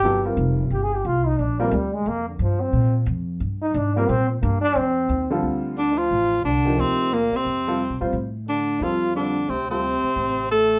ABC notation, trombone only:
X:1
M:4/4
L:1/16
Q:"Swing" 1/4=178
K:Gphr
V:1 name="Trombone"
G2 z6 (3G2 A2 G2 F2 E2 | D2 B,2 G,2 A,2 B,2 D,2 F,2 C2- | C2 z8 E2 D2 B,2 | C2 F,2 B,2 D2 C6- C z |
[K:Dphr] z4 D,2 F,6 D,4 | C,4 B,,2 C,8 z2 | z4 D,4 F,4 D,4 | C,2 C,8- C,2 A,4 |]